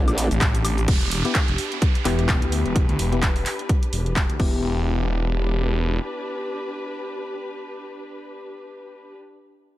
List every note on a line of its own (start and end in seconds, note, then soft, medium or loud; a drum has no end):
0.00 0.29 A1 loud
0.00 0.84 A3 medium
0.00 0.84 C4 medium
0.00 0.88 C4 medium
0.00 0.84 D4 medium
0.00 4.38 D4 medium
0.00 4.40 G4 medium
0.00 0.84 A4 medium
0.08 closed hi-hat medium
0.08 high woodblock medium
0.08 shaker soft
0.18 open hi-hat loud
0.18 shaker medium
0.31 0.39 A1 loud
0.31 closed hi-hat soft
0.31 shaker soft
0.41 0.86 A1 loud
0.41 kick loud
0.41 clap loud
0.41 closed hi-hat medium
0.41 shaker soft
0.55 closed hi-hat medium
0.55 shaker soft
0.65 open hi-hat loud
0.65 high woodblock medium
0.65 shaker medium
0.78 closed hi-hat soft
0.78 shaker soft
0.88 1.23 E1 loud
0.88 kick loud
0.88 closed hi-hat medium
0.88 crash medium
0.88 downlifter medium
1.01 closed hi-hat medium
1.11 open hi-hat loud
1.25 1.33 B3 medium
1.25 1.33 E4 medium
1.25 1.33 G4 medium
1.25 closed hi-hat soft
1.35 kick loud
1.35 clap loud
1.35 closed hi-hat medium
1.48 1.57 F1 medium
1.48 closed hi-hat medium
1.58 4.40 B4 medium
1.58 open hi-hat loud
1.72 closed hi-hat soft
1.82 kick loud
1.82 closed hi-hat medium
1.95 closed hi-hat soft
2.05 2.40 E1 loud
2.05 3.09 B3 loud
2.05 3.09 E4 medium
2.05 3.09 G4 loud
2.05 clap medium
2.05 open hi-hat loud
2.19 closed hi-hat soft
2.29 kick loud
2.29 clap loud
2.29 closed hi-hat medium
2.42 2.63 D2 medium
2.42 closed hi-hat medium
2.52 open hi-hat loud
2.65 2.87 E1 medium
2.65 closed hi-hat soft
2.76 kick loud
2.76 closed hi-hat medium
2.89 2.97 D2 medium
2.89 closed hi-hat medium
2.99 3.44 E1 medium
2.99 open hi-hat loud
3.12 3.20 B3 medium
3.12 3.20 E4 medium
3.12 3.20 G4 medium
3.12 closed hi-hat soft
3.22 kick loud
3.22 clap loud
3.22 closed hi-hat medium
3.36 open hi-hat medium
3.46 clap medium
3.46 open hi-hat loud
3.59 closed hi-hat soft
3.69 kick loud
3.69 closed hi-hat medium
3.83 closed hi-hat soft
3.93 4.27 E1 medium
3.93 open hi-hat loud
4.06 closed hi-hat soft
4.16 kick loud
4.16 clap loud
4.16 closed hi-hat medium
4.30 4.39 D2 medium
4.30 closed hi-hat soft
4.39 6.00 E1 medium
4.39 9.14 B3 medium
4.39 9.14 D4 medium
4.39 9.14 E4 medium
4.39 9.14 G4 medium
4.39 kick loud
4.39 crash medium
4.48 9.14 G4 medium
4.78 9.14 B4 medium